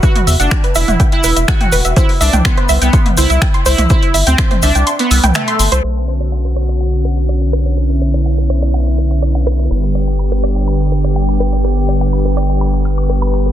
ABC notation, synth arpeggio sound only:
X:1
M:4/4
L:1/16
Q:1/4=124
K:Bm
V:1 name="Synth arpeggio sound"
B z e f g B e f g z B e f g B e | =c z e g =c' c e g c' z c e g c' c e | =c z e g =c' c e g c' z e' g e c' c' c | z2 c d f B c d f z B c d f B c |
B z c d f B c d f z B c d f B c | B z d g b B d g b z B d g b B d | B z d g b B d g b z ^e' d' B b b B |]